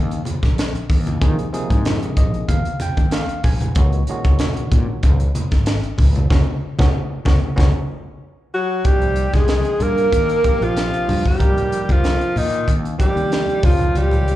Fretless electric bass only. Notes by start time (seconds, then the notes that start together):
Already playing: D#2
0.43 A#1
0.75 muted fretless electric bass stroke
0.89 D#2
1.22 D#3
1.53 muted fretless electric bass stroke
1.70 G#2
2.17 A#1
2.34 muted fretless electric bass stroke
2.48 D#2
2.80 muted fretless electric bass stroke
2.97 D#2
3.29 muted fretless electric bass stroke
3.44 A#1
3.61 muted fretless electric bass stroke
3.76 C#2
4.25 C#2
4.57 muted fretless electric bass stroke
4.72 A#2
4.88 muted fretless electric bass stroke
5.03 C#2
5.52 G#1
5.84 muted fretless electric bass stroke
5.99 C#2
6.31 C#2
6.79 C#2
7.26 C#2
7.58 C#2
8.85 C2
9.34 C2
9.80 G2
10.12 D#2
10.61 A#1
11.08 G2
11.26 muted fretless electric bass stroke
11.40 C2
11.73 muted fretless electric bass stroke
11.89 C2
12.36 A#2
12.68 D#2
13.16 D#2
13.63 C#2
13.95 C#2